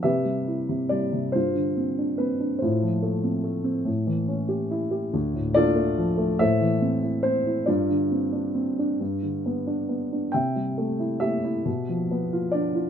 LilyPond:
<<
  \new Staff \with { instrumentName = "Grand piano" } { \time 6/8 \key c \major \tempo 4. = 47 << { e''4 d''8 c''4 b'8 | c''4. r4. | r8 d''4 e''4 c''8 | d''2 r4 |
g''4 e''4 r8 d''8 | } \\ { <g' b'>4. f'4. | <e' f'>4. r4. | r8 <f' a'>4 <a' c''>4. | f'2 r4 |
e''4 g'4. r8 | } >> }
  \new Staff \with { instrumentName = "Grand piano" } { \time 6/8 \key c \major c16 g16 e'16 c16 g16 c16 g,16 d16 c'16 d'16 c'16 d'16 | a,16 f16 a16 c'16 a16 c'16 a,16 e16 cis'16 g'16 e'16 g'16 | d,16 a,16 d16 a16 f16 a16 a,16 e16 c'16 e'16 c'16 e'16 | g,16 d16 c'16 d'16 c'16 d'16 g,16 d16 b16 d'16 b16 d'16 |
c16 g16 a16 e'16 a16 e'16 b,16 f16 b16 f'16 d'16 f'16 | }
>>